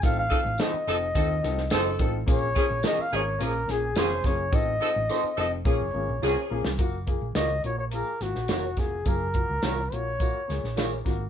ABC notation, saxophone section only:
X:1
M:4/4
L:1/16
Q:1/4=106
K:Gblyd
V:1 name="Saxophone section"
z2 [F,E=A] z3 [F,EA] z [F,EA] z3 [F,EA]3 z | z2 [F,DA] z3 [F,DA] z [F,DA] z3 [F,DA]3 z | z2 [F,E=A] z3 [F,EA] z [F,D_A] z3 [F,DA]3 z | z16 |
z16 |]